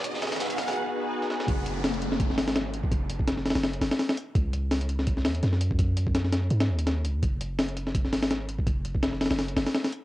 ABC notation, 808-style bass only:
X:1
M:4/4
L:1/16
Q:"Swing 16ths" 1/4=167
K:G#phr
V:1 name="808-style bass" clef=bass
z16 | F,,,8- F,,,2 G,,,6 | F,,,6- F,,, F,,,3 F,,, z4 z | C,,8- C,,2 E,,2 F,,4- |
F,,8 G,,2 D,,4 C,, E,, | F,,,8- F,,,2 G,,,6 | F,,,6- F,,, F,,,3 F,,, z4 z |]